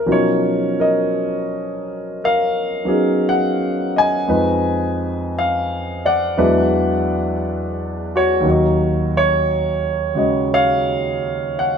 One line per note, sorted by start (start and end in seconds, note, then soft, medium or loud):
0.06 4.28 B2 soft
0.06 4.27 F3 soft
0.06 2.84 F#3 soft
0.06 2.85 C#4 soft
0.06 2.87 D#4 soft
0.06 0.78 A#4 soft
0.12 0.81 C#5 medium
0.80 2.23 A#4 medium
0.80 2.16 D#5 medium
2.24 4.27 A#4 medium
2.24 3.30 F5 medium
2.85 4.26 F#3 soft
2.85 4.27 B3 soft
2.85 4.27 C#4 soft
2.85 4.27 D#4 soft
2.85 4.28 G#4 soft
3.29 3.91 F#5 medium
3.96 5.99 D#5 medium
3.96 5.31 G#5 medium
4.28 6.37 F2 soft
4.28 6.37 F3 soft
4.28 6.36 G#3 soft
4.28 6.37 D#4 soft
4.28 6.37 B4 soft
5.39 6.07 F5 medium
6.06 8.07 D5 medium
6.06 8.17 F#5 medium
6.37 8.44 E2 medium
6.37 8.44 E3 soft
6.37 8.44 F#3 soft
6.37 8.45 G#3 soft
6.37 8.45 D4 soft
6.37 8.45 B4 medium
8.16 10.15 F#4 medium
8.16 8.50 C#5 medium
8.40 11.78 D#2 soft
8.40 11.78 D#3 soft
8.45 11.78 F#3 soft
8.45 11.78 D#4 soft
8.51 9.16 C#5 soft
9.17 10.22 C#5 medium
10.15 11.78 C#3 soft
10.15 11.78 G#3 soft
10.15 11.78 F#4 soft
10.15 11.78 D#5 soft
10.54 11.78 C#5 medium
10.54 11.61 F5 loud
11.59 11.78 F#5 medium